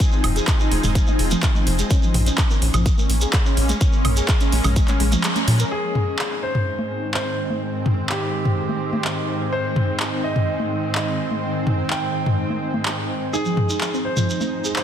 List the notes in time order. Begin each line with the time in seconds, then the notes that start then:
Already playing: F3 C4 D#4 G#4
0.00 kick, closed hi-hat, shekere
0.12 C4, shekere
0.24 F1, mid tom, open hi-hat, high woodblock
0.36 G#4, closed hi-hat, shekere
0.47 kick, clap, closed hi-hat, shekere
0.60 D#4, shekere
0.71 F1, open hi-hat, high conga
0.83 F1 G#3, mid tom, open hi-hat, shekere
0.95 kick, closed hi-hat, shekere
1.07 D#4, high conga, shekere
1.19 F1, open hi-hat
1.31 F3, closed hi-hat, high conga, shekere
1.43 kick, clap, closed hi-hat, shekere
1.55 D#4, high conga, shekere
1.67 F1, open hi-hat
1.79 G#3, closed hi-hat, shekere
1.90 G#3 A#3 C#4, kick, closed hi-hat, shekere
2.03 F3, shekere
2.14 A#1, mid tom, open hi-hat
2.26 C#4, closed hi-hat, shekere
2.38 kick, clap, closed hi-hat, shekere
2.50 A#3, shekere
2.62 A#1, open hi-hat
2.74 A#1 F3, closed hi-hat, mid tom, high woodblock, shekere
2.86 kick, closed hi-hat, shekere
2.98 A#3, high conga, shekere
3.10 A#1, open hi-hat
3.21 G#4, closed hi-hat, shekere
3.33 kick, clap, closed hi-hat, shekere
3.45 C#4, shekere
3.57 A#1, open hi-hat
3.69 G#3, closed hi-hat, high conga, shekere
3.81 kick, closed hi-hat, shekere
3.93 A#3, shekere
4.05 A#1, mid tom, open hi-hat, high woodblock
4.17 G#4, closed hi-hat, shekere
4.28 kick, clap, closed hi-hat, shekere
4.40 C#4, closed hi-hat, shekere
4.52 A#1, open hi-hat, high conga
4.64 A#1 G#3, mid tom, open hi-hat, high woodblock, shekere
4.76 kick, closed hi-hat, shekere
4.88 C#4, clap, closed hi-hat, high conga, shekere
5.00 A#1 G#3, open hi-hat
5.12 F3, closed hi-hat, high conga, shekere
5.24 G#3, clap, closed hi-hat, shekere
5.36 C#4, closed hi-hat, high conga, shekere
5.48 A#2 F3, open hi-hat
5.59 A#4, closed hi-hat, shekere
5.71 G#2 D#3 G#3 C4 G#4
5.95 mid tom
6.19 clap
6.43 C5
6.55 mid tom
6.79 high conga
7.14 C5, clap
7.50 high conga
7.86 mid tom
8.09 G4, clap
8.45 mid tom
8.69 high conga
8.93 high conga
9.04 clap
9.52 C5
9.76 mid tom
10.00 clap
10.24 D#5
10.36 mid tom
10.60 high conga
10.95 D#5, clap
11.31 high conga
11.67 mid tom
11.90 G5, clap
12.26 mid tom
12.50 high conga
12.74 high conga
12.85 clap
13.33 F2 F3 G#3 D#4 G#4, shekere
13.45 F3, shekere
13.57 mid tom
13.69 D#4, shekere
13.81 clap, shekere
13.93 C4, shekere
14.05 C5
14.17 F3, mid tom, shekere
14.30 shekere
14.41 C4, high conga, shekere
14.64 G#4, shekere
14.76 C5, clap, shekere